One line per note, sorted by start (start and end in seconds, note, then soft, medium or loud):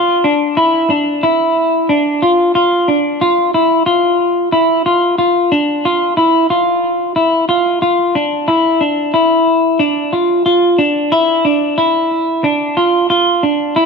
0.00 0.24 F4 medium
0.24 0.57 D4 medium
0.57 0.90 E4 medium
0.90 1.23 D4 medium
1.23 1.89 E4 medium
1.89 2.22 D4 medium
2.22 2.54 F4 medium
2.55 2.88 F4 medium
2.88 3.21 D4 medium
3.21 3.54 F4 loud
3.54 3.86 E4 medium
3.86 4.52 F4 medium
4.52 4.86 E4 medium
4.86 5.17 F4 medium
5.18 5.51 F4 medium
5.52 5.85 D4 medium
5.85 6.17 F4 loud
6.17 6.50 E4 medium
6.50 7.16 F4 medium
7.16 7.48 E4 medium
7.49 7.81 F4 medium
7.82 8.15 F4 medium
8.15 8.48 D4 medium
8.48 8.81 E4 medium
8.81 9.14 D4 medium
9.14 9.80 E4 medium
9.79 10.13 D4 medium
10.13 10.45 F4 medium
10.46 10.79 F4 medium
10.78 11.12 D4 medium
11.12 11.45 E4 loud
11.45 11.78 D4 medium
11.78 12.44 E4 medium
12.44 12.77 D4 medium
12.77 13.09 F4 medium
13.10 13.43 F4 medium
13.43 13.76 D4 medium
13.76 13.86 E4 loud